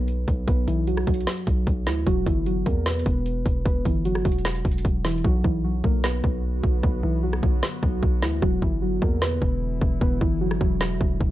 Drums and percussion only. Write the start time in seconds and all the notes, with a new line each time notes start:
0.08 closed hi-hat
0.28 kick, closed hi-hat
0.48 kick, closed hi-hat
0.68 closed hi-hat
0.87 closed hi-hat
0.97 cross-stick
1.07 kick, closed hi-hat
1.14 closed hi-hat
1.21 closed hi-hat
1.27 snare, closed hi-hat
1.37 closed hi-hat
1.47 kick, closed hi-hat
1.67 kick, closed hi-hat
1.87 snare, closed hi-hat
2.07 kick, closed hi-hat
2.26 kick, closed hi-hat
2.46 closed hi-hat
2.66 kick, closed hi-hat
2.86 snare, closed hi-hat
2.93 closed hi-hat
2.99 closed hi-hat
3.06 kick, closed hi-hat
3.26 closed hi-hat
3.46 kick, closed hi-hat
3.66 kick, closed hi-hat
3.85 kick, closed hi-hat
4.05 closed hi-hat
4.15 cross-stick
4.25 kick, closed hi-hat
4.32 closed hi-hat
4.38 closed hi-hat
4.45 snare, closed hi-hat
4.55 closed hi-hat
4.65 kick, closed hi-hat
4.72 closed hi-hat
4.78 closed hi-hat
4.85 kick, closed hi-hat
5.05 snare, closed hi-hat
5.11 closed hi-hat
5.18 closed hi-hat
5.24 kick
5.44 kick
5.84 kick
6.04 snare
6.24 kick
6.64 kick
6.83 kick
7.33 cross-stick
7.43 kick
7.63 snare
7.83 kick
8.03 kick
8.22 snare
8.42 kick
8.62 kick
9.02 kick
9.22 snare
9.42 kick
9.81 kick
10.01 kick
10.21 kick
10.51 cross-stick
10.61 kick
10.81 snare
11.01 kick
11.21 kick